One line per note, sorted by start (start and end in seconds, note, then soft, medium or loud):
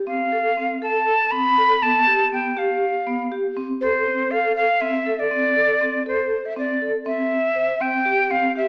0.07 0.21 C4 medium
0.07 0.78 F5 medium
0.32 0.47 A4 medium
0.57 0.72 C4 medium
0.82 1.11 A4 medium
0.82 1.33 A5 medium
1.31 1.47 C4 medium
1.31 1.84 B5 medium
1.58 1.72 A4 medium
1.82 1.97 B3 medium
1.82 2.32 A5 medium
2.07 2.22 G4 medium
2.32 2.47 B3 medium
2.32 2.60 G5 medium
2.57 2.86 G4 medium
2.57 3.32 F5 medium
3.07 3.21 B3 medium
3.32 3.46 G4 medium
3.57 3.71 C4 medium
3.81 3.97 A4 medium
3.81 4.32 C5 medium
4.07 4.22 C4 medium
4.31 4.61 A4 medium
4.31 4.55 F5 medium
4.56 4.82 F5 medium
4.81 4.96 C4 medium
4.81 5.21 E5 medium
5.06 5.21 A4 medium
5.19 6.06 D5 medium
5.31 5.46 C4 medium
5.56 5.71 A4 medium
5.81 5.96 C4 medium
6.06 6.35 A4 medium
6.06 6.47 C5 medium
6.45 6.57 E5 medium
6.56 6.71 C4 medium
6.56 6.92 D5 medium
6.82 6.96 A4 medium
7.06 7.35 C4 medium
7.06 7.83 E5 medium
7.55 7.70 C5 medium
7.80 7.95 C4 medium
7.80 8.32 G5 medium
8.05 8.20 G4 medium
8.31 8.45 C4 medium
8.31 8.56 F5 medium
8.56 8.68 G4 medium
8.56 8.68 E5 medium